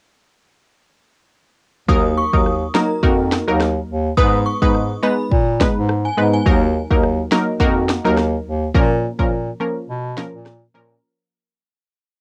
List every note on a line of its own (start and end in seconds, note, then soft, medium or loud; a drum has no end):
1.88 2.24 D#2 loud
1.88 2.05 F#3 medium
1.88 2.05 A#3 medium
1.88 2.05 D#4 medium
1.88 2.05 A#4 loud
1.88 2.03 D#6 loud
1.88 kick loud
2.17 2.32 C#6 medium
2.33 2.65 D#2 medium
2.33 2.46 F#3 medium
2.33 2.46 A#3 medium
2.33 2.46 D#4 medium
2.33 2.46 A#4 medium
2.33 2.45 D#6 medium
2.33 kick medium
2.46 cross-stick medium
2.74 2.91 F#3 medium
2.74 2.91 A#3 medium
2.74 2.91 D#4 medium
2.74 2.91 A#4 medium
2.74 2.89 A#5 medium
2.74 cross-stick medium
2.74 snare loud
3.03 3.38 F2 medium
3.03 3.44 A#3 medium
3.03 3.44 D#4 medium
3.03 3.44 F#4 medium
3.03 3.44 A#4 loud
3.03 kick medium
3.32 cross-stick loud
3.32 snare loud
3.47 3.80 D#2 loud
3.47 3.60 F#3 medium
3.47 3.60 A#3 medium
3.47 3.61 D#4 medium
3.47 3.61 A#4 medium
3.60 cross-stick loud
3.60 snare medium
3.89 4.11 D#2 medium
4.17 4.52 G#2 loud
4.17 4.34 G#3 medium
4.17 4.34 B3 medium
4.17 4.34 D#4 medium
4.17 4.34 B4 loud
4.17 4.32 D#6 loud
4.17 kick loud
4.46 4.60 C#6 medium
4.62 4.94 G#2 medium
4.62 4.75 G#3 medium
4.62 4.75 B3 medium
4.62 4.75 D#4 medium
4.62 4.75 B4 medium
4.62 4.73 D#6 medium
4.62 kick medium
4.75 cross-stick medium
5.03 5.19 G#3 medium
5.03 5.19 B3 medium
5.03 5.19 D#4 medium
5.03 5.19 B4 medium
5.03 5.18 B5 medium
5.32 5.66 A#2 loud
5.32 kick loud
5.60 5.76 G#3 medium
5.60 5.77 B3 medium
5.60 5.77 D#4 medium
5.60 5.77 B4 medium
5.60 kick loud
5.60 cross-stick loud
5.60 snare loud
5.76 6.08 G#2 medium
5.89 cross-stick loud
6.05 6.16 G#5 medium
6.17 6.40 G#2 medium
6.17 6.44 G#3 medium
6.17 6.44 B3 medium
6.17 6.44 D#4 medium
6.17 6.44 B4 medium
6.33 6.45 G#5 medium
6.46 6.81 D#2 loud
6.46 6.62 F#3 medium
6.46 6.62 A#3 medium
6.46 6.62 D#4 medium
6.46 6.62 A#4 loud
6.46 kick loud
6.90 7.23 D#2 medium
6.90 7.03 F#3 medium
6.90 7.03 A#3 medium
6.90 7.04 D#4 medium
6.90 7.04 A#4 medium
6.90 kick medium
7.03 cross-stick medium
7.31 7.48 F#3 medium
7.31 7.48 A#3 medium
7.31 7.48 D#4 medium
7.31 7.48 A#4 medium
7.31 cross-stick medium
7.31 snare loud
7.60 7.95 F2 medium
7.60 8.01 A#3 medium
7.60 8.01 D#4 medium
7.60 8.01 F#4 medium
7.60 8.01 A#4 loud
7.60 kick loud
7.89 cross-stick loud
7.89 snare loud
8.05 8.37 D#2 medium
8.05 8.18 F#3 medium
8.05 8.18 A#3 medium
8.05 8.18 D#4 medium
8.05 8.18 A#4 medium
8.17 cross-stick loud
8.17 snare medium
8.46 8.68 D#2 medium
8.74 9.09 A#2 loud
8.74 8.91 F3 medium
8.74 8.91 A#3 medium
8.74 8.91 C#4 medium
8.74 8.91 A#4 loud
8.74 kick loud
9.19 9.51 A#2 medium
9.19 9.32 F3 medium
9.19 9.32 A#3 medium
9.19 9.32 C#4 medium
9.19 9.32 A#4 medium
9.19 kick medium
9.60 9.76 F3 medium
9.60 9.76 A#3 medium
9.60 9.77 C#4 medium
9.60 9.77 A#4 medium
9.89 10.24 B2 loud
10.17 10.34 F3 medium
10.17 10.34 A#3 medium
10.17 10.34 C#4 medium
10.17 10.34 A#4 medium
10.17 cross-stick loud
10.17 snare loud
10.33 10.66 A#2 medium
10.46 cross-stick loud
10.46 snare medium
10.74 10.97 A#2 medium
10.74 11.01 F3 medium
10.74 11.01 A#3 medium
10.74 11.01 C#4 medium
10.74 11.01 A#4 medium